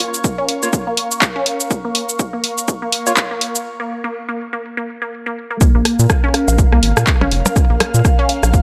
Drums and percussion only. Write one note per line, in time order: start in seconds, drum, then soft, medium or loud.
0.00 open hi-hat medium
0.14 shaker medium
0.24 kick loud
0.24 shaker soft
0.49 open hi-hat medium
0.63 shaker soft
0.73 kick loud
0.73 shaker soft
0.97 open hi-hat medium
1.11 shaker medium
1.22 kick loud
1.22 clap loud
1.22 shaker soft
1.46 open hi-hat medium
1.60 shaker medium
1.70 kick loud
1.70 shaker soft
1.95 open hi-hat medium
2.09 shaker medium
2.19 kick loud
2.19 shaker soft
2.44 open hi-hat medium
2.58 shaker medium
2.68 kick loud
2.68 shaker soft
2.92 open hi-hat medium
3.07 shaker medium
3.17 kick loud
3.17 clap loud
3.17 shaker soft
3.41 open hi-hat medium
3.55 shaker medium
5.61 kick loud
5.61 shaker soft
5.85 cross-stick soft
5.85 open hi-hat medium
5.99 shaker medium
6.10 kick loud
6.10 cross-stick medium
6.10 shaker soft
6.34 cross-stick soft
6.34 open hi-hat medium
6.34 low woodblock medium
6.48 low woodblock medium
6.48 shaker medium
6.58 kick loud
6.58 shaker soft
6.72 cross-stick soft
6.83 open hi-hat medium
6.97 cross-stick medium
6.97 shaker medium
7.07 kick loud
7.07 clap loud
7.07 shaker soft
7.21 cross-stick soft
7.21 percussion blips medium
7.31 open hi-hat medium
7.46 percussion blips loud
7.46 shaker medium
7.56 kick loud
7.56 cross-stick soft
7.56 shaker soft
7.80 cross-stick medium
7.80 open hi-hat loud
7.80 percussion blips medium
7.94 shaker medium
8.05 kick loud
8.05 cross-stick soft
8.05 shaker soft
8.29 open hi-hat medium
8.29 low woodblock medium
8.43 cross-stick soft
8.43 low woodblock medium
8.43 shaker medium
8.54 kick loud
8.54 shaker soft